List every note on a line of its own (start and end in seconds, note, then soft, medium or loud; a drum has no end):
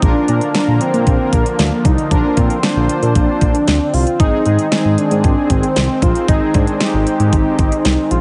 0.02 0.14 A#1 loud
0.02 4.16 D3 medium
0.02 4.16 F3 medium
0.02 2.09 A#3 loud
0.02 0.49 A#3 medium
0.02 0.28 D4 loud
0.02 0.49 D4 medium
0.02 0.49 F4 medium
0.02 0.49 A#4 medium
0.02 kick loud
0.02 closed hi-hat medium
0.28 0.40 A#2 loud
0.28 0.82 D4 loud
0.28 closed hi-hat medium
0.41 closed hi-hat medium
0.55 1.47 A#3 medium
0.55 1.47 D4 medium
0.55 1.47 F4 medium
0.55 1.47 A#4 medium
0.55 snare loud
0.55 closed hi-hat medium
0.68 0.79 A#1 loud
0.81 1.34 C4 loud
0.81 closed hi-hat medium
0.94 1.05 A#2 loud
0.94 closed hi-hat medium
1.07 1.18 A#1 loud
1.07 kick medium
1.07 closed hi-hat medium
1.33 1.44 A#1 loud
1.33 1.87 A#3 loud
1.33 kick medium
1.33 closed hi-hat medium
1.46 closed hi-hat medium
1.59 1.71 D2 loud
1.59 snare loud
1.59 closed hi-hat medium
1.85 1.97 C2 medium
1.85 2.13 D#4 loud
1.85 kick medium
1.85 closed hi-hat medium
1.98 closed hi-hat soft
2.11 2.23 A#1 loud
2.11 2.57 A#3 medium
2.11 8.21 C4 medium
2.11 2.39 D4 loud
2.11 2.57 D4 medium
2.11 2.57 F4 medium
2.11 2.57 A#4 medium
2.11 kick loud
2.11 closed hi-hat medium
2.37 2.49 A#2 loud
2.37 2.65 C4 loud
2.37 kick loud
2.37 closed hi-hat medium
2.50 closed hi-hat medium
2.63 3.56 A#3 medium
2.63 3.56 D4 medium
2.63 3.95 D4 loud
2.63 3.56 F4 medium
2.63 3.56 C5 medium
2.63 snare loud
2.63 closed hi-hat medium
2.76 2.88 A#1 loud
2.89 closed hi-hat medium
3.02 3.14 A#2 loud
3.02 closed hi-hat medium
3.15 3.27 A#1 loud
3.15 kick medium
3.15 closed hi-hat medium
3.41 3.53 A#1 loud
3.41 kick medium
3.41 closed hi-hat medium
3.55 closed hi-hat medium
3.67 3.79 D2 medium
3.67 snare loud
3.67 closed hi-hat medium
3.94 4.05 C2 loud
3.94 4.19 F4 loud
3.94 open hi-hat medium
4.07 closed hi-hat soft
4.20 4.31 G#1 loud
4.20 8.21 D#3 medium
4.20 4.66 G#3 medium
4.20 8.21 G#3 medium
4.20 4.66 C4 medium
4.20 4.66 D#4 medium
4.20 4.44 D#4 loud
4.20 4.66 G#4 medium
4.20 kick loud
4.20 closed hi-hat medium
4.46 4.58 G#2 loud
4.46 5.00 D#4 loud
4.46 closed hi-hat medium
4.59 closed hi-hat medium
4.72 5.64 D#3 medium
4.72 5.64 G#3 medium
4.72 5.64 C4 medium
4.72 5.64 G#4 medium
4.72 snare loud
4.72 closed hi-hat medium
4.85 4.97 G#1 loud
4.98 5.52 D4 loud
4.98 closed hi-hat medium
5.11 5.23 G#2 loud
5.11 closed hi-hat medium
5.24 5.36 G#1 loud
5.24 kick medium
5.24 closed hi-hat medium
5.50 5.62 G#1 loud
5.50 6.04 C4 loud
5.50 kick medium
5.50 closed hi-hat medium
5.63 closed hi-hat medium
5.76 5.88 C2 loud
5.76 snare loud
5.76 closed hi-hat medium
6.02 6.14 A#1 loud
6.02 6.28 F4 loud
6.02 kick medium
6.02 closed hi-hat medium
6.15 closed hi-hat soft
6.28 6.40 G#1 loud
6.28 6.75 G#3 medium
6.28 6.75 C4 medium
6.28 6.56 D#4 loud
6.28 6.75 D#4 medium
6.28 6.75 G#4 medium
6.28 kick loud
6.28 closed hi-hat medium
6.54 6.66 G#2 loud
6.54 6.82 D4 loud
6.54 kick loud
6.54 closed hi-hat medium
6.67 closed hi-hat medium
6.80 7.73 G#3 medium
6.80 7.73 C4 medium
6.80 7.73 D#4 medium
6.80 8.11 D#4 loud
6.80 7.73 G4 medium
6.80 snare loud
6.80 closed hi-hat medium
6.94 7.05 G#1 loud
7.07 closed hi-hat medium
7.20 7.31 G#2 medium
7.20 closed hi-hat medium
7.33 7.44 G#1 loud
7.33 kick loud
7.33 closed hi-hat medium
7.59 7.71 G#1 loud
7.59 kick medium
7.59 closed hi-hat medium
7.72 closed hi-hat medium
7.85 7.97 C2 loud
7.85 snare loud
7.85 closed hi-hat medium
8.11 8.21 A#1 medium
8.11 8.21 F4 loud
8.11 closed hi-hat medium